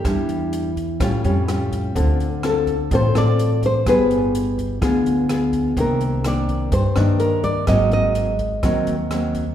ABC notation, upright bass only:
X:1
M:4/4
L:1/8
Q:1/4=126
K:Gm
V:1 name="Upright bass" clef=bass
=E,,4 A,,, ^E,,3 | D,,4 A,,, A,,,3 | G,,,4 D,, D,,3 | C,,4 G,, G,,3 |
_A,,,4 E,, E,,3 |]